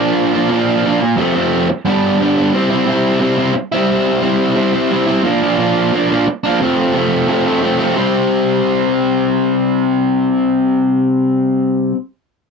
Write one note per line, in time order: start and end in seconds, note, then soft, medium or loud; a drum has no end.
0.00 0.48 A#2 medium
0.00 0.35 F3 loud
0.00 0.34 A#3 medium
0.00 0.32 D4 medium
0.34 0.49 F3 medium
0.34 0.51 A#3 medium
0.34 0.51 D4 medium
0.49 0.84 A#2 loud
0.49 0.85 F3 medium
0.49 0.86 A#3 loud
0.49 0.86 D4 loud
0.85 1.16 A#2 medium
0.85 1.02 F3 medium
0.85 1.01 A#3 medium
0.85 1.00 D4 medium
1.01 muted overdriven electric guitar stroke medium
1.17 1.68 F2 loud
1.17 1.69 C3 loud
1.17 1.37 F3 loud
1.17 1.36 A3 loud
1.17 1.34 C4 loud
1.35 1.68 F3 medium
1.35 1.69 A3 medium
1.35 1.68 C4 medium
1.70 muted overdriven electric guitar stroke medium
1.85 2.51 G2 loud
1.85 2.18 D3 loud
1.85 2.19 G3 loud
1.85 2.20 B3 loud
1.85 2.21 D4 loud
2.19 2.51 D3 medium
2.19 2.38 G3 medium
2.19 2.37 B3 medium
2.19 2.35 D4 medium
2.36 2.52 G3 medium
2.36 2.52 B3 medium
2.36 2.51 D4 medium
2.53 2.85 C3 medium
2.53 2.72 G3 medium
2.53 2.70 C4 medium
2.53 2.69 E4 medium
2.70 2.86 G3 soft
2.70 2.87 C4 medium
2.70 2.88 E4 medium
2.86 3.18 C3 medium
2.86 3.19 G3 medium
2.86 3.20 C4 medium
2.86 3.21 E4 medium
3.19 3.53 C3 medium
3.19 3.39 G3 medium
3.19 3.37 C4 medium
3.19 3.36 E4 medium
3.37 3.54 G3 medium
3.37 3.54 C4 medium
3.37 3.54 E4 medium
3.54 muted overdriven electric guitar stroke soft
3.72 4.21 G3 medium
3.72 4.22 C4 medium
3.72 4.23 E4 medium
4.21 4.54 C3 medium
4.21 4.54 G3 medium
4.21 4.56 C4 medium
4.21 4.56 E4 medium
4.55 4.89 C3 medium
4.55 4.75 G3 medium
4.55 4.74 C4 medium
4.55 4.72 E4 medium
4.73 4.91 G3 medium
4.73 4.91 C4 medium
4.73 4.92 E4 medium
4.90 5.22 C3 medium
4.90 5.09 G3 medium
4.90 5.07 C4 medium
4.90 5.05 E4 medium
5.06 5.23 G3 medium
5.06 5.22 C4 medium
5.06 5.22 E4 medium
5.23 5.56 A#2 medium
5.23 5.44 F3 medium
5.23 5.42 A#3 medium
5.23 5.40 D4 medium
5.42 5.57 F3 medium
5.42 5.58 A#3 medium
5.42 5.59 D4 medium
5.58 5.91 A#2 medium
5.58 5.92 F3 medium
5.58 5.93 A#3 medium
5.58 5.94 D4 medium
5.92 6.26 A#2 medium
5.92 6.12 F3 medium
5.92 6.10 A#3 loud
5.92 6.08 D4 medium
6.09 6.26 F3 medium
6.09 6.26 A#3 medium
6.09 6.27 D4 medium
6.27 muted overdriven electric guitar stroke soft
6.44 6.60 F3 medium
6.44 6.59 A#3 medium
6.44 6.58 D4 medium
6.60 7.26 F2 medium
6.60 6.94 C3 medium
6.60 6.94 F3 medium
6.60 6.96 A3 medium
6.60 6.97 C4 loud
6.95 7.27 C3 medium
6.95 7.28 F3 medium
6.95 7.28 A3 medium
6.95 7.29 C4 medium
7.27 7.79 F2 medium
7.27 7.60 C3 medium
7.27 7.47 F3 medium
7.27 7.45 A3 medium
7.27 7.44 C4 medium
7.45 7.61 F3 soft
7.45 7.62 A3 medium
7.45 7.64 C4 medium
7.61 7.93 C3 medium
7.61 7.81 F3 medium
7.61 7.80 A3 medium
7.61 7.78 C4 medium
7.79 7.96 F3 soft
7.79 7.95 A3 medium
7.79 7.94 C4 medium
7.94 11.92 C3 medium
7.94 11.95 G3 medium
7.98 11.97 C4 medium